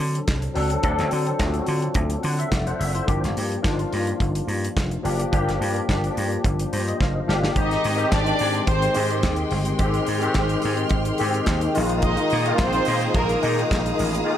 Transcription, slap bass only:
0.00 0.19 D3 medium
0.28 0.47 C2 medium
0.56 0.75 C#2 medium
0.84 0.94 D2 loud
0.99 1.08 D2 loud
1.12 1.31 D3 medium
1.40 1.59 D2 medium
1.68 1.87 D3 medium
1.95 2.15 D2 medium
2.24 2.43 D3 medium
2.52 2.71 F1 medium
2.80 2.99 F#1 medium
3.09 3.19 G1 loud
3.24 3.33 G1 medium
3.37 3.56 G2 loud
3.64 3.83 G1 medium
3.93 4.12 G2 medium
4.21 4.40 G1 loud
4.48 4.67 G2 medium
4.76 4.95 F1 medium
5.05 5.24 F#1 medium
5.33 5.43 G1 medium
5.47 5.56 G1 medium
5.61 5.80 G2 medium
5.89 6.08 G1 medium
6.17 6.36 G2 medium
6.45 6.64 G1 medium
6.73 6.92 G2 medium
7.01 7.20 F#1 medium
7.29 7.48 G1 medium
7.56 7.75 G#1 medium
7.85 8.04 G#2 loud
8.12 8.31 G#1 medium
8.41 8.59 G#2 medium
8.67 8.87 G#1 medium
8.96 9.25 G#2 medium
9.23 9.43 D#2 medium
9.51 9.71 G1 medium
9.79 9.99 G#1 loud
10.08 10.27 G#2 medium
10.35 10.55 G#1 medium
10.65 10.83 G#2 medium
10.91 11.10 G#1 medium
11.21 11.39 G#2 medium
11.47 11.66 D#2 loud
11.77 12.15 A#1 loud
12.32 12.51 A#2 loud
12.59 12.78 A#1 loud
12.88 13.07 A#2 medium
13.15 13.34 A#1 medium
13.44 13.63 A#2 medium
13.71 13.90 A#1 medium
14.00 14.18 A1 medium

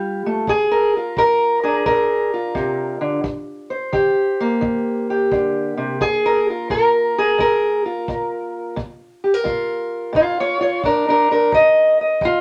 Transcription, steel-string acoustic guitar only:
0.00 0.26 G3 medium
0.00 0.47 F4 soft
0.26 0.48 A3 medium
0.48 1.13 A#2 medium
0.48 0.96 G#4 loud
0.71 1.17 A#4 medium
0.97 1.63 F4 soft
1.18 1.82 A#2 medium
1.18 1.85 A#4 loud
1.63 3.22 D4 soft
1.63 2.33 G#4 medium
1.86 2.51 A#2 medium
1.86 3.24 A#4 loud
2.34 3.22 F4 soft
2.55 3.01 C3 medium
3.01 3.24 D3 medium
3.24 3.89 D#3 medium
3.70 5.98 C5 medium
3.93 4.58 D#3 medium
3.93 5.09 G4 medium
4.40 8.77 A#3 medium
4.61 5.27 D#3 medium
5.10 5.99 G4 medium
5.32 5.77 D3 medium
5.77 6.00 C3 medium
6.01 6.66 A#2 medium
6.01 6.48 G#4 loud
6.26 6.69 A#4 medium
6.50 7.18 F4 soft
6.70 7.35 A#2 medium
6.70 7.39 A#4 loud
7.18 7.85 G#4 medium
7.38 8.03 A#2 medium
7.38 8.78 A#4 loud
7.86 8.74 F4 soft
8.09 8.73 A#2 medium
8.76 9.41 A#2 medium
9.24 9.34 G4 soft
9.34 10.17 A#4 soft
9.44 10.09 A#2 medium
9.44 10.14 F4 soft
10.13 10.78 A#2 medium
10.13 10.38 F4 medium
10.17 10.39 C#5 medium
10.40 10.59 F4 medium
10.40 10.61 C#5 medium
10.61 10.84 F4 medium
10.61 10.85 C#5 medium
10.84 11.48 A#2 medium
10.84 11.07 D4 medium
10.84 11.08 A#4 medium
11.08 11.30 D4 medium
11.08 11.31 A#4 medium
11.31 11.53 D4 medium
11.31 11.54 A#4 medium
11.52 12.17 D#3 medium
11.52 12.00 D#5 medium
12.01 12.41 D#5 soft
12.22 12.41 D#3 medium
12.22 12.41 F4 loud

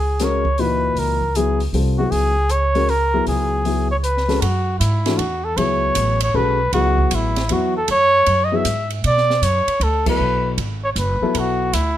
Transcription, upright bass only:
0.00 0.93 C#2 medium
0.95 1.69 C#2 medium
1.73 2.09 C2 medium
2.12 3.23 C#2 medium
3.27 4.38 C#2 medium
4.42 4.79 F#2 medium
4.80 5.18 G#2 medium
5.18 5.56 E2 medium
5.57 5.94 C#2 medium
5.96 6.33 A1 medium
6.34 6.72 B1 medium
6.73 7.10 C#2 medium
7.12 7.49 A1 medium
7.50 7.87 E2 medium
7.88 8.26 F#2 medium
8.27 8.64 F#2 medium
8.65 9.03 G#2 medium
9.04 9.41 B2 medium
9.42 9.66 F#2 medium
9.67 muted upright bass stroke soft
9.80 10.18 D2 medium
10.19 10.57 B1 medium
10.58 10.95 G#1 medium
10.96 11.20 F#1 medium
11.21 muted upright bass stroke soft
11.35 11.72 B1 medium
11.73 11.97 D2 medium

